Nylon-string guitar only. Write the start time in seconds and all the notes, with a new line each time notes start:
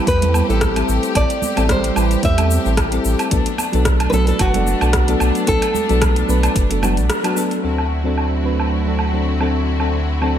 0.08 B4
0.50 A4
1.16 D5
1.71 C5
2.25 E5
4.10 A4 B4
4.28 A4
4.41 F#4
5.48 A4